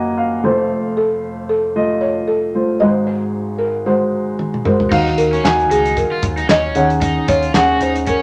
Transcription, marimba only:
0, 0, Header, 1, 2, 480
1, 0, Start_track
1, 0, Tempo, 526316
1, 643, Time_signature, 4, 2, 24, 8
1, 7499, End_track
2, 0, Start_track
2, 0, Title_t, "Marimba"
2, 0, Program_c, 0, 12
2, 886, Note_on_c, 0, 69, 72
2, 1352, Note_off_c, 0, 69, 0
2, 1363, Note_on_c, 0, 69, 71
2, 1833, Note_on_c, 0, 73, 71
2, 1857, Note_off_c, 0, 69, 0
2, 2076, Note_on_c, 0, 69, 63
2, 2085, Note_off_c, 0, 73, 0
2, 2554, Note_on_c, 0, 75, 81
2, 2574, Note_off_c, 0, 69, 0
2, 2782, Note_off_c, 0, 75, 0
2, 2799, Note_on_c, 0, 72, 76
2, 3269, Note_on_c, 0, 70, 70
2, 3295, Note_off_c, 0, 72, 0
2, 3380, Note_off_c, 0, 70, 0
2, 3521, Note_on_c, 0, 72, 63
2, 3968, Note_off_c, 0, 72, 0
2, 4246, Note_on_c, 0, 70, 66
2, 4713, Note_off_c, 0, 70, 0
2, 4724, Note_on_c, 0, 70, 86
2, 5208, Note_on_c, 0, 68, 67
2, 5218, Note_off_c, 0, 70, 0
2, 5314, Note_off_c, 0, 68, 0
2, 5452, Note_on_c, 0, 70, 63
2, 5933, Note_on_c, 0, 75, 86
2, 5941, Note_off_c, 0, 70, 0
2, 6172, Note_on_c, 0, 73, 80
2, 6175, Note_off_c, 0, 75, 0
2, 6636, Note_off_c, 0, 73, 0
2, 6647, Note_on_c, 0, 73, 90
2, 7136, Note_on_c, 0, 72, 82
2, 7139, Note_off_c, 0, 73, 0
2, 7241, Note_off_c, 0, 72, 0
2, 7380, Note_on_c, 0, 70, 66
2, 7499, Note_off_c, 0, 70, 0
2, 7499, End_track
0, 0, End_of_file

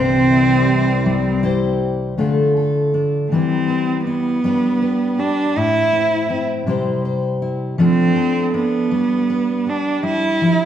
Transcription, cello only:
0, 0, Header, 1, 2, 480
1, 0, Start_track
1, 0, Key_signature, 0, "major"
1, 0, Tempo, 749064
1, 1392, Time_signature, 6, 3, 24, 8
1, 6825, End_track
2, 0, Start_track
2, 0, Title_t, "Cello"
2, 0, Program_c, 0, 42
2, 0, Note_on_c, 0, 60, 104
2, 888, Note_off_c, 0, 60, 0
2, 2128, Note_on_c, 0, 60, 65
2, 2576, Note_off_c, 0, 60, 0
2, 2598, Note_on_c, 0, 59, 80
2, 3332, Note_on_c, 0, 62, 81
2, 3341, Note_off_c, 0, 59, 0
2, 3571, Note_on_c, 0, 64, 88
2, 3581, Note_off_c, 0, 62, 0
2, 4104, Note_off_c, 0, 64, 0
2, 5009, Note_on_c, 0, 60, 83
2, 5453, Note_off_c, 0, 60, 0
2, 5477, Note_on_c, 0, 59, 82
2, 6213, Note_on_c, 0, 62, 79
2, 6222, Note_off_c, 0, 59, 0
2, 6442, Note_off_c, 0, 62, 0
2, 6448, Note_on_c, 0, 64, 86
2, 6825, Note_off_c, 0, 64, 0
2, 6825, End_track
0, 0, End_of_file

